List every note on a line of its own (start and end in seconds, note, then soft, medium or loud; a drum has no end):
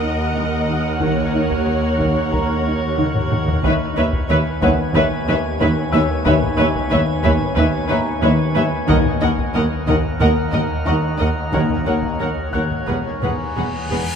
0.00 3.60 D#2 medium
0.00 3.61 D#2 medium
0.00 3.61 D#2 soft
0.00 0.22 D#4 soft
0.00 3.61 A#4 soft
0.00 3.64 A#4 medium
0.00 1.01 D#5 medium
0.00 1.01 D#5 soft
0.00 3.64 F#5 medium
0.00 3.64 F#5 soft
0.36 0.55 D#3 medium
0.69 0.88 D#3 medium
1.00 1.95 D#3 medium
1.00 1.21 D#3 medium
1.00 3.60 C#5 medium
1.00 3.63 C#5 medium
1.00 taiko medium
1.34 1.54 D#4 medium
1.51 taiko medium
1.67 1.86 D#3 soft
1.99 2.19 D#3 medium
1.99 taiko medium
2.32 2.52 D#3 soft
2.32 4.26 A#4 soft
2.32 4.26 A#5 soft
2.32 taiko medium
2.66 2.85 D#4 medium
2.98 3.18 D#3 medium
2.98 taiko mid medium
3.15 taiko low-mid medium
3.32 3.51 D#3 medium
3.32 taiko low-mid medium
3.48 taiko low medium
3.64 3.72 D#2 medium
3.64 3.73 D#2 medium
3.64 8.86 D#2 medium
3.64 3.84 D#3 medium
3.64 8.89 B3 medium
3.64 3.72 B4 medium
3.64 3.72 C#5 medium
3.64 8.85 C#5 medium
3.64 3.73 E5 medium
3.64 8.89 G#5 medium
3.64 taiko medium
3.96 4.05 D#2 medium
3.96 4.17 D#4 medium
3.96 4.05 B4 medium
3.96 4.04 C#5 medium
3.96 4.05 E5 medium
4.13 taiko medium
4.29 4.37 D#2 medium
4.29 4.38 D#2 medium
4.29 4.49 D#3 medium
4.29 4.38 B4 medium
4.29 4.37 C#5 medium
4.29 4.38 E5 medium
4.62 4.71 D#2 medium
4.62 4.82 D#3 medium
4.62 4.71 B4 medium
4.62 4.70 C#5 medium
4.62 4.70 E5 medium
4.62 6.55 F#5 medium
4.62 taiko medium
4.95 5.04 D#2 medium
4.95 5.15 D#3 medium
4.95 5.04 B4 medium
4.95 5.04 C#5 medium
4.95 5.03 E5 medium
4.95 taiko medium
5.28 5.36 D#2 medium
5.28 5.37 D#2 medium
5.28 5.48 D#4 medium
5.28 5.36 B4 medium
5.28 5.37 C#5 medium
5.28 5.36 E5 medium
5.60 5.69 D#2 medium
5.60 5.70 D#2 medium
5.60 5.80 D#3 medium
5.60 5.68 B4 medium
5.60 5.69 C#5 medium
5.60 5.69 E5 medium
5.92 6.02 D#2 medium
5.92 6.13 D#3 medium
5.92 6.00 B4 medium
5.92 6.02 C#5 medium
5.92 6.01 E5 medium
5.92 7.86 E6 medium
6.25 6.34 D#2 medium
6.25 6.45 D#3 medium
6.25 6.33 B4 medium
6.25 6.35 C#5 medium
6.25 6.33 E5 medium
6.25 taiko medium
6.43 taiko low-mid soft
6.58 6.66 D#2 medium
6.58 6.67 D#2 medium
6.58 6.78 D#4 medium
6.58 6.66 B4 medium
6.58 6.67 C#5 medium
6.58 6.66 E5 medium
6.75 taiko medium
6.90 6.99 D#2 medium
6.90 7.00 D#2 medium
6.90 7.11 D#3 medium
6.90 6.99 B4 medium
6.90 6.98 C#5 medium
6.90 6.99 E5 medium
7.23 7.32 D#2 medium
7.23 7.33 D#2 medium
7.23 7.44 D#3 medium
7.23 7.31 B4 medium
7.23 7.32 C#5 medium
7.23 7.32 E5 medium
7.23 taiko medium
7.41 taiko low-mid soft
7.56 7.65 D#2 medium
7.56 7.77 D#3 medium
7.56 7.64 B4 medium
7.56 7.65 C#5 medium
7.56 7.66 E5 medium
7.56 taiko medium
7.89 7.98 D#2 medium
7.89 8.10 D#4 medium
7.89 7.97 B4 medium
7.89 7.97 C#5 medium
7.89 7.98 E5 medium
7.89 9.85 A#5 medium
7.89 taiko low-mid medium
8.22 8.31 D#2 medium
8.22 8.43 D#3 loud
8.22 8.30 B4 medium
8.22 8.31 C#5 medium
8.22 8.31 E5 medium
8.55 8.64 D#2 medium
8.55 8.75 D#3 medium
8.55 8.63 B4 medium
8.55 8.64 C#5 medium
8.55 8.64 E5 medium
8.87 12.84 D#2 medium
8.87 8.97 D#2 medium
8.87 9.09 D#3 medium
8.87 9.84 D#3 medium
8.87 8.95 A#4 medium
8.87 12.89 A#4 medium
8.87 8.96 D#5 medium
8.87 11.54 D#5 medium
8.87 8.96 F#5 medium
8.87 14.15 F#5 medium
8.87 taiko medium
9.05 taiko low-mid soft
9.21 9.30 D#2 medium
9.21 9.42 D#4 medium
9.21 9.29 A#4 medium
9.21 9.30 D#5 medium
9.21 9.30 F#5 medium
9.38 taiko medium
9.55 9.63 D#2 medium
9.55 9.75 D#3 medium
9.55 9.63 A#4 medium
9.55 9.63 D#5 medium
9.55 9.63 F#5 medium
9.87 9.96 D#2 medium
9.87 10.08 D#3 medium
9.87 9.96 A#4 medium
9.87 9.95 D#5 medium
9.87 9.97 F#5 medium
9.87 taiko medium
10.04 taiko low-mid soft
10.20 10.29 D#2 medium
10.20 10.41 D#3 medium
10.20 10.28 A#4 medium
10.20 10.29 D#5 medium
10.20 10.28 F#5 medium
10.20 taiko medium
10.52 10.62 D#2 medium
10.52 10.74 D#4 medium
10.52 10.62 A#4 medium
10.52 10.60 D#5 medium
10.52 10.61 F#5 medium
10.52 taiko low-mid soft
10.86 10.95 D#2 medium
10.86 11.07 D#3 medium
10.86 10.95 A#4 soft
10.86 10.94 D#5 medium
10.86 10.95 F#5 medium
10.86 12.84 C#6 soft
11.19 11.28 D#2 medium
11.19 11.40 D#3 soft
11.19 11.28 A#4 soft
11.19 11.27 D#5 medium
11.19 11.29 F#5 soft
11.52 11.61 D#2 medium
11.52 11.62 D#2 medium
11.52 12.50 D#3 medium
11.52 11.73 D#3 medium
11.52 11.61 A#4 medium
11.52 11.61 C#5 medium
11.52 12.89 C#5 medium
11.52 11.61 F#5 medium
11.52 taiko medium
11.52 reverse cymbal medium
11.70 taiko low-mid soft
11.86 11.94 D#2 medium
11.86 11.95 D#2 soft
11.86 12.07 D#4 medium
11.86 11.95 A#4 soft
11.86 11.94 C#5 soft
11.86 11.94 F#5 soft
12.03 taiko medium
12.20 12.29 D#2 medium
12.20 12.29 D#2 soft
12.20 12.41 D#3 soft
12.20 12.28 A#4 soft
12.20 12.28 C#5 soft
12.20 12.29 F#5 soft
12.53 12.62 D#2 soft
12.53 12.74 D#3 medium
12.53 12.62 A#4 soft
12.53 12.61 C#5 soft
12.53 12.62 F#5 soft
12.53 14.15 F#6 soft
12.53 taiko medium
12.71 taiko low-mid soft
12.87 12.96 E1 soft
12.87 13.09 E2 soft
12.87 14.15 E2 medium
12.87 12.97 E2 soft
12.87 12.96 G#4 soft
12.87 14.15 G#4 medium
12.87 12.95 B4 soft
12.87 14.15 B4 medium
12.87 12.96 F#5 soft
12.87 taiko medium
13.22 13.30 E1 soft
13.22 13.31 E2 soft
13.22 13.43 E3 soft
13.22 13.31 G#4 soft
13.22 13.31 B4 soft
13.22 13.31 F#5 soft
13.22 taiko low-mid medium
13.56 13.65 E1 soft
13.56 13.77 E2 medium
13.56 13.65 E2 soft
13.56 13.64 G#4 soft
13.56 13.65 B4 soft
13.56 13.66 F#5 soft
13.90 13.99 E1 soft
13.90 14.11 E2 soft
13.90 13.99 E2 soft
13.90 13.99 G#4 soft
13.90 13.99 B4 soft
13.90 14.00 F#5 soft